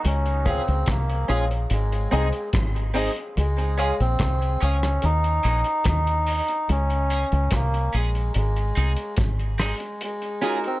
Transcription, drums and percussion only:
0.05 closed hi-hat
0.26 closed hi-hat
0.46 kick, closed hi-hat
0.68 closed hi-hat
0.86 kick, cross-stick, closed hi-hat
1.10 closed hi-hat
1.29 closed hi-hat
1.51 closed hi-hat
1.70 closed hi-hat
1.93 closed hi-hat
2.13 closed hi-hat
2.33 closed hi-hat
2.53 kick, cross-stick, closed hi-hat
2.76 closed hi-hat
2.95 open hi-hat
3.16 closed hi-hat
3.37 closed hi-hat
3.58 closed hi-hat
3.79 closed hi-hat
4.00 closed hi-hat
4.19 kick, cross-stick, closed hi-hat
4.42 closed hi-hat
4.61 closed hi-hat
4.83 cross-stick, closed hi-hat
5.02 closed hi-hat
5.24 closed hi-hat
5.45 closed hi-hat
5.64 closed hi-hat
5.84 kick, cross-stick, closed hi-hat
6.07 closed hi-hat
6.27 open hi-hat
6.49 closed hi-hat
6.69 closed hi-hat
6.90 closed hi-hat
7.10 closed hi-hat
7.32 closed hi-hat
7.51 kick, cross-stick, closed hi-hat
7.74 closed hi-hat
7.93 closed hi-hat
8.15 closed hi-hat
8.34 closed hi-hat
8.56 closed hi-hat
8.77 closed hi-hat
8.97 closed hi-hat
9.17 kick, cross-stick, closed hi-hat
9.40 closed hi-hat
9.59 cross-stick, open hi-hat
9.80 closed hi-hat
10.01 closed hi-hat
10.22 closed hi-hat
10.42 closed hi-hat
10.64 closed hi-hat

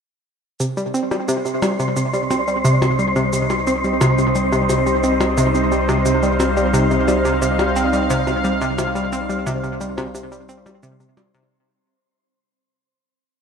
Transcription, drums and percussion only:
0.60 shaker
0.77 shaker
0.94 shaker
1.11 percussion blips, shaker
1.28 shaker
1.46 shaker
1.62 percussion blips, shaker
1.80 shaker
1.96 shaker
2.14 shaker
2.31 percussion blips, shaker
2.48 shaker
2.65 shaker
2.82 percussion blips, shaker
2.99 shaker
3.16 shaker
3.33 shaker
3.50 percussion blips, shaker
3.67 shaker
3.84 shaker
4.01 percussion blips, shaker
4.18 shaker
4.35 shaker
4.52 shaker
4.69 percussion blips, shaker
4.87 shaker
5.03 shaker
5.21 percussion blips, shaker
5.37 shaker
5.55 shaker
5.72 shaker
5.89 percussion blips, shaker
6.06 shaker
6.23 shaker
6.40 percussion blips, shaker
6.57 shaker
6.74 shaker
6.91 shaker
7.08 percussion blips, shaker
7.25 shaker
7.42 shaker
7.59 percussion blips, shaker
7.76 shaker
7.93 shaker
8.10 shaker
8.27 percussion blips, shaker
8.44 shaker
8.61 shaker
8.78 percussion blips, shaker
8.96 shaker
9.13 shaker
9.30 shaker
9.47 percussion blips, shaker
9.64 shaker
9.81 shaker
9.98 percussion blips, shaker
10.15 shaker
10.32 shaker
10.49 shaker
10.66 percussion blips, shaker
10.83 shaker
11.00 shaker
11.17 percussion blips, shaker
11.34 shaker

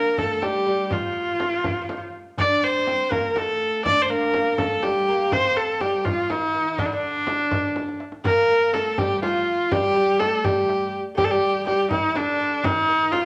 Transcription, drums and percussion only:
0.18 tombak dum, frame drum
0.42 tombak tek, frame drum
0.91 frame drum, tombak dum
1.17 tombak ka
1.40 tombak tek, frame drum
1.64 frame drum, tombak dum
1.89 tombak tek, frame drum
2.14 tombak ka
2.38 tombak dum, frame drum
2.63 tombak ka
2.87 tombak tek, frame drum
3.11 tombak dum, frame drum
3.36 tombak tek, frame drum
3.85 tombak dum, frame drum
4.10 tombak ka
4.34 tombak tek, frame drum
4.58 frame drum, tombak dum
4.83 tombak tek, frame drum
5.32 tombak dum, frame drum
5.57 tombak ka
5.81 tombak tek, frame drum
6.05 frame drum, tombak dum
6.30 tombak tek, frame drum
6.78 tombak dum, frame drum
7.03 tombak ka
7.27 tombak tek, frame drum
7.51 frame drum, tombak dum
7.76 tombak tek, frame drum
7.88 tombak ka
8.00 tombak tek
8.12 tombak ka
8.24 tombak dum, frame drum
8.73 tombak tek, frame drum
8.98 tombak dum, frame drum
9.22 tombak tek, frame drum
9.72 tombak dum, frame drum
10.20 tombak tek, frame drum
10.44 frame drum, tombak dum
10.69 tombak tek
11.18 tombak dum, frame drum
11.66 tombak tek, frame drum
11.91 tombak dum, frame drum
12.15 tombak tek, frame drum
12.64 tombak dum, frame drum
13.12 tombak tek, frame drum

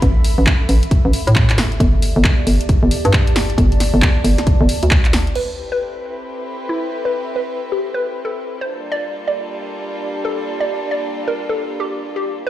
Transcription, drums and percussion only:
0.02 kick, closed hi-hat
0.24 open hi-hat
0.47 kick, clap
0.69 open hi-hat
0.83 closed hi-hat
0.91 kick, closed hi-hat
1.13 open hi-hat
1.27 closed hi-hat
1.36 kick, clap
1.50 clap, closed hi-hat
1.58 snare, open hi-hat
1.72 closed hi-hat
1.80 kick, closed hi-hat
2.02 open hi-hat
2.25 kick, clap
2.47 open hi-hat
2.61 closed hi-hat
2.69 kick, closed hi-hat
2.91 open hi-hat
3.05 closed hi-hat
3.13 kick, clap
3.27 closed hi-hat
3.36 snare, open hi-hat
3.50 closed hi-hat
3.58 kick, closed hi-hat
3.72 closed hi-hat
3.80 snare, open hi-hat
4.02 kick, clap
4.25 open hi-hat
4.38 snare, closed hi-hat
4.47 kick, closed hi-hat
4.69 open hi-hat
4.83 closed hi-hat
4.91 kick, clap
5.05 clap, closed hi-hat
5.13 snare, open hi-hat
5.27 closed hi-hat
5.35 crash

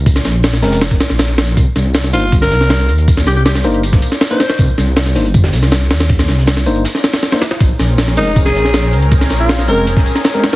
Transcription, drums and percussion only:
0.06 kick, closed hi-hat, tambourine
0.16 snare
0.25 snare, closed hi-hat, tambourine
0.43 snare, closed hi-hat, tambourine
0.53 snare
0.63 snare, closed hi-hat, tambourine
0.72 snare, closed hi-hat, tambourine
0.81 snare, closed hi-hat, tambourine
0.91 kick, snare
1.00 snare, closed hi-hat, tambourine
1.10 snare
1.19 snare, closed hi-hat, tambourine
1.29 closed hi-hat
1.38 snare, closed hi-hat, tambourine
1.48 closed hi-hat
1.57 kick, closed hi-hat, tambourine
1.76 snare, closed hi-hat, tambourine
1.94 snare, closed hi-hat, tambourine
2.04 snare
2.13 open hi-hat
2.23 closed hi-hat
2.32 kick, closed hi-hat, tambourine
2.42 snare
2.51 snare, closed hi-hat, tambourine
2.61 snare
2.69 snare, closed hi-hat, tambourine
2.80 closed hi-hat
2.89 closed hi-hat, tambourine
2.98 closed hi-hat
3.08 kick, closed hi-hat, tambourine
3.17 snare
3.27 snare, closed hi-hat, tambourine
3.45 snare, closed hi-hat, tambourine
3.55 snare
3.64 closed hi-hat, tambourine
3.74 closed hi-hat
3.83 closed hi-hat, tambourine
3.92 kick, snare
4.02 closed hi-hat, tambourine
4.12 snare
4.21 snare, closed hi-hat, tambourine
4.31 closed hi-hat
4.40 snare, closed hi-hat, tambourine
4.50 snare, closed hi-hat
4.59 kick, closed hi-hat, tambourine
4.78 snare, closed hi-hat, tambourine
4.96 snare, closed hi-hat, tambourine
5.06 snare
5.15 open hi-hat
5.25 closed hi-hat
5.34 kick, closed hi-hat, tambourine
5.44 snare
5.53 snare, closed hi-hat, tambourine
5.63 snare
5.72 snare, closed hi-hat, tambourine
5.81 closed hi-hat
5.91 snare, closed hi-hat, tambourine
6.00 snare, closed hi-hat
6.10 kick, closed hi-hat, open hi-hat
6.19 snare, closed hi-hat
6.29 snare, closed hi-hat, tambourine
6.38 snare
6.47 snare, closed hi-hat, tambourine
6.57 snare
6.66 closed hi-hat, tambourine
6.76 closed hi-hat
6.85 snare, closed hi-hat, tambourine
6.95 snare
7.04 snare, closed hi-hat, open hi-hat
7.12 snare, closed hi-hat, tambourine
7.23 snare, closed hi-hat
7.32 snare, closed hi-hat, open hi-hat
7.42 snare, closed hi-hat, tambourine
7.51 snare, closed hi-hat
7.60 kick, closed hi-hat, tambourine
7.79 snare, closed hi-hat, tambourine
7.98 snare, closed hi-hat, tambourine
8.08 snare
8.17 open hi-hat
8.27 closed hi-hat
8.36 kick, closed hi-hat, tambourine
8.46 snare
8.55 snare, closed hi-hat, tambourine
8.65 snare
8.73 snare, closed hi-hat, tambourine
8.83 closed hi-hat
8.93 closed hi-hat, tambourine
9.02 closed hi-hat
9.11 kick, closed hi-hat, tambourine
9.21 snare
9.30 snare, closed hi-hat, tambourine
9.49 snare, closed hi-hat, tambourine
9.59 snare
9.68 closed hi-hat, tambourine
9.78 closed hi-hat
9.87 closed hi-hat, tambourine
9.97 kick, snare
10.06 closed hi-hat, tambourine
10.15 snare
10.24 snare, closed hi-hat, tambourine
10.34 closed hi-hat
10.43 snare, closed hi-hat, tambourine

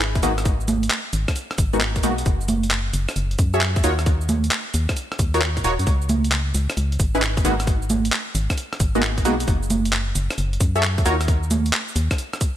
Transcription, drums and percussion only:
0.00 clap, shaker
0.15 kick, closed hi-hat, shaker
0.23 closed hi-hat, shaker
0.38 cross-stick, closed hi-hat, shaker
0.45 kick, closed hi-hat, shaker
0.61 shaker
0.68 closed hi-hat, high conga, shaker
0.83 closed hi-hat, shaker
0.91 clap, shaker
1.13 closed hi-hat, shaker
1.28 kick, cross-stick, closed hi-hat, shaker
1.36 closed hi-hat, shaker
1.51 cross-stick, closed hi-hat
1.58 kick, closed hi-hat, shaker
1.73 shaker
1.81 clap, shaker
1.96 kick, closed hi-hat, shaker
2.03 closed hi-hat, shaker
2.18 closed hi-hat, shaker
2.26 kick, closed hi-hat, shaker
2.41 shaker
2.48 closed hi-hat, high conga, shaker
2.63 closed hi-hat, shaker
2.71 clap, shaker
2.94 closed hi-hat, shaker
3.09 cross-stick, closed hi-hat, shaker
3.16 closed hi-hat, shaker
3.31 closed hi-hat
3.39 kick, closed hi-hat, shaker
3.54 shaker
3.61 clap, shaker
3.76 kick, closed hi-hat, shaker
3.84 closed hi-hat, shaker
3.99 cross-stick, closed hi-hat, shaker
4.06 kick, closed hi-hat, shaker
4.21 shaker
4.29 closed hi-hat, high conga, shaker
4.44 closed hi-hat, shaker
4.51 clap, shaker
4.74 closed hi-hat, shaker
4.89 kick, cross-stick, closed hi-hat, shaker
4.97 closed hi-hat, shaker
5.12 cross-stick, closed hi-hat
5.19 kick, closed hi-hat, shaker
5.34 closed hi-hat, shaker
5.42 clap, shaker
5.57 kick, closed hi-hat, shaker
5.64 closed hi-hat, shaker
5.79 closed hi-hat, shaker
5.87 kick, closed hi-hat, shaker
6.02 shaker
6.09 closed hi-hat, high conga, shaker
6.24 closed hi-hat, shaker
6.32 clap, shaker
6.55 closed hi-hat, shaker
6.70 cross-stick, closed hi-hat, shaker
6.77 closed hi-hat, shaker
6.92 closed hi-hat
7.00 kick, closed hi-hat, shaker
7.15 shaker
7.22 clap, shaker
7.37 kick, closed hi-hat, shaker
7.45 closed hi-hat, shaker
7.60 cross-stick, closed hi-hat, shaker
7.67 kick, closed hi-hat, shaker
7.82 shaker
7.90 closed hi-hat, high conga, shaker
8.05 closed hi-hat, shaker
8.13 clap, shaker
8.35 closed hi-hat, shaker
8.50 kick, cross-stick, closed hi-hat, shaker
8.58 closed hi-hat, shaker
8.73 cross-stick, closed hi-hat
8.80 kick, closed hi-hat, shaker
8.95 shaker
9.03 clap, shaker
9.18 kick, closed hi-hat, shaker
9.25 closed hi-hat, shaker
9.40 closed hi-hat, shaker
9.48 kick, closed hi-hat, shaker
9.63 shaker
9.70 closed hi-hat, high conga, shaker
9.85 closed hi-hat, shaker
9.93 clap, shaker
10.15 closed hi-hat, shaker
10.30 cross-stick, closed hi-hat, shaker
10.38 closed hi-hat, shaker
10.53 closed hi-hat
10.61 kick, closed hi-hat, shaker
10.76 shaker
10.83 clap, shaker
10.98 kick, closed hi-hat, shaker
11.06 closed hi-hat, shaker
11.21 cross-stick, closed hi-hat, shaker
11.28 kick, closed hi-hat, shaker
11.43 shaker
11.51 closed hi-hat, high conga, shaker
11.66 closed hi-hat, shaker
11.73 clap, shaker
11.88 shaker
11.96 closed hi-hat, shaker
12.11 kick, cross-stick, closed hi-hat, shaker
12.18 closed hi-hat, shaker
12.33 cross-stick, closed hi-hat, shaker
12.41 kick, closed hi-hat, shaker

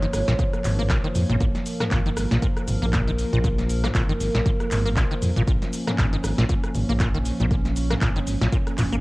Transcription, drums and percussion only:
0.02 closed hi-hat, shaker
0.13 cross-stick, open hi-hat, shaker
0.28 snare, closed hi-hat, shaker
0.39 kick, closed hi-hat, shaker
0.53 cross-stick, closed hi-hat, shaker
0.64 clap, mid tom, open hi-hat, shaker
0.79 shaker
0.90 kick, snare, clap, closed hi-hat, shaker
1.04 closed hi-hat, shaker
1.15 mid tom, open hi-hat, shaker
1.30 closed hi-hat, shaker
1.41 kick, closed hi-hat, shaker
1.55 snare, closed hi-hat, shaker
1.66 open hi-hat, shaker
1.80 cross-stick, snare, closed hi-hat, mid tom, shaker
1.91 kick, clap, closed hi-hat, shaker
2.06 closed hi-hat, shaker
2.17 cross-stick, open hi-hat, shaker
2.31 snare, closed hi-hat, shaker
2.42 kick, closed hi-hat, shaker
2.57 cross-stick, closed hi-hat, shaker
2.68 mid tom, open hi-hat, shaker
2.82 mid tom, shaker
2.93 kick, clap, closed hi-hat, shaker
3.08 closed hi-hat, shaker
3.19 open hi-hat, shaker
3.33 closed hi-hat, shaker
3.44 kick, closed hi-hat, shaker
3.58 snare, closed hi-hat, shaker
3.70 open hi-hat, shaker
3.84 cross-stick, snare, mid tom, shaker
3.95 kick, clap, closed hi-hat, shaker
4.09 closed hi-hat, shaker
4.20 open hi-hat, shaker
4.35 snare, closed hi-hat, shaker
4.46 kick, closed hi-hat, shaker
4.60 cross-stick, closed hi-hat, shaker
4.71 clap, mid tom, open hi-hat, shaker
4.86 shaker
4.97 kick, clap, closed hi-hat, shaker
5.11 closed hi-hat, shaker
5.22 mid tom, open hi-hat, shaker
5.36 closed hi-hat, shaker
5.47 kick, closed hi-hat, shaker
5.62 snare, closed hi-hat, shaker
5.73 open hi-hat, shaker
5.87 cross-stick, snare, closed hi-hat, mid tom, shaker
5.98 kick, clap, closed hi-hat, shaker
6.13 closed hi-hat, shaker
6.24 cross-stick, open hi-hat, shaker
6.38 snare, closed hi-hat, shaker
6.49 kick, closed hi-hat, shaker
6.63 cross-stick, closed hi-hat, shaker
6.75 mid tom, open hi-hat, shaker
6.89 mid tom, shaker
7.00 kick, clap, closed hi-hat, shaker
7.14 closed hi-hat, shaker
7.25 open hi-hat, shaker
7.40 closed hi-hat, shaker
7.51 kick, closed hi-hat, shaker
7.65 snare, closed hi-hat, shaker
7.76 open hi-hat, shaker
7.91 cross-stick, snare, closed hi-hat, mid tom, shaker
8.02 kick, clap, closed hi-hat, shaker
8.16 closed hi-hat, shaker
8.27 open hi-hat, shaker
8.42 snare, closed hi-hat, shaker
8.53 kick, closed hi-hat, shaker
8.67 cross-stick, closed hi-hat, shaker
8.78 clap, mid tom, open hi-hat, shaker
8.92 closed hi-hat, shaker

